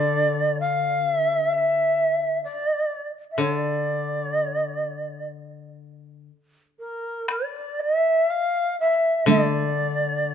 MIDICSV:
0, 0, Header, 1, 4, 480
1, 0, Start_track
1, 0, Tempo, 925926
1, 1751, Time_signature, 4, 2, 24, 8
1, 2234, Tempo, 961538
1, 2714, Tempo, 1011804
1, 4154, Tempo, 966184
1, 5166, End_track
2, 0, Start_track
2, 0, Title_t, "Shakuhachi"
2, 0, Program_c, 0, 77
2, 0, Note_on_c, 0, 74, 78
2, 309, Note_off_c, 0, 74, 0
2, 312, Note_on_c, 0, 77, 77
2, 576, Note_off_c, 0, 77, 0
2, 576, Note_on_c, 0, 76, 77
2, 794, Note_off_c, 0, 76, 0
2, 794, Note_on_c, 0, 76, 79
2, 1262, Note_off_c, 0, 76, 0
2, 1265, Note_on_c, 0, 74, 68
2, 1595, Note_off_c, 0, 74, 0
2, 1718, Note_on_c, 0, 76, 42
2, 1758, Note_on_c, 0, 73, 58
2, 1766, Note_off_c, 0, 76, 0
2, 1836, Note_off_c, 0, 73, 0
2, 1836, Note_on_c, 0, 74, 58
2, 2718, Note_off_c, 0, 74, 0
2, 3436, Note_on_c, 0, 70, 51
2, 3660, Note_off_c, 0, 70, 0
2, 3678, Note_on_c, 0, 74, 67
2, 3915, Note_on_c, 0, 76, 70
2, 3922, Note_off_c, 0, 74, 0
2, 4152, Note_on_c, 0, 77, 77
2, 4159, Note_off_c, 0, 76, 0
2, 4395, Note_off_c, 0, 77, 0
2, 4398, Note_on_c, 0, 76, 76
2, 4622, Note_off_c, 0, 76, 0
2, 4647, Note_on_c, 0, 74, 78
2, 5166, Note_off_c, 0, 74, 0
2, 5166, End_track
3, 0, Start_track
3, 0, Title_t, "Koto"
3, 0, Program_c, 1, 107
3, 0, Note_on_c, 1, 50, 44
3, 1266, Note_off_c, 1, 50, 0
3, 1751, Note_on_c, 1, 50, 40
3, 3192, Note_off_c, 1, 50, 0
3, 4629, Note_on_c, 1, 50, 46
3, 5166, Note_off_c, 1, 50, 0
3, 5166, End_track
4, 0, Start_track
4, 0, Title_t, "Taiko and cinematic ensemble drums"
4, 3670, Note_on_c, 9, 37, 52
4, 3717, Note_off_c, 9, 37, 0
4, 4637, Note_on_c, 9, 48, 52
4, 4687, Note_off_c, 9, 48, 0
4, 5166, End_track
0, 0, End_of_file